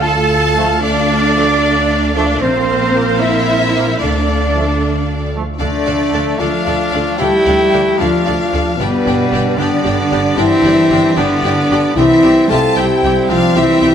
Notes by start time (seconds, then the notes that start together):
Already playing: D2 A4 F5
0.02 F4 A4 A5
0.56 F3 A3
0.82 A3 D4 D5
1.35 F3 A3
2.15 F3 A3 A#3 D4 D5
2.41 A#1 F3 C4 A#4 C5 F5
2.95 F3 A#3
3.20 C4 E4 E5
3.75 F3 A#3
4.00 D2 A3 D4 A4 D5
4.55 F3 A3
5.35 F3 A3
5.59 D2 D3 F3 A3 D4 A4 D5 F5
5.86 D2 D4 A4 D5 F5
6.14 D2 D4 A4 D5 F5
6.39 D2 F3 D4 F4 A4 D5 F5
6.66 D2 D4 A4 D5 F5
6.92 D2 D4 A4 D5 F5
7.18 D2 G3 D4 E4 G4 A4 D5 F5 G5
7.45 D2 D4 A4 D5 F5
7.73 D2 D4 A4 D5 F5
7.98 D2 F3 D4 F4 A4 D5 F5
8.26 D2 D4 A4 D5 F5
8.53 D2 D4 A4 D5 F5
8.78 G1 B2 G3 B3 D4 G4 B4 D5 G5
9.05 G1 D4 G4 D5 G5
9.32 G1 D4 G4 D5 G5
9.57 G1 D3 B3 D4 G4 D5 G5
9.84 G1 D4 G4 D5 G5
10.11 G1 D4 G4 D5 G5
10.37 G1 E3 C4 D4 E4 G4 D5 E5 G5
10.64 G1 D4 G4 D5 G5
10.91 G1 D4 G4 D5 G5
11.16 G1 D3 B3 D4 G4 D5 G5
11.44 G1 D4 G4 D5 G5
11.71 G1 D4 G4 D5 G5
11.96 C2 E3 G3 C4 E4 G4 E5 G5
12.23 C2 C4 G4 E5 G5
12.50 C2 A3 C4 F4 G4 A4 E5 G5 A5
12.76 C2 G3 C4 E4 G4 E5 G5
13.03 C2 C4 G4 E5 G5
13.29 C2 F3 C4 D4 F4 G4 E5 F5 G5
13.55 C2 E3 C4 E4 G4 E5 G5
13.81 C2 C4 G4 E5 G5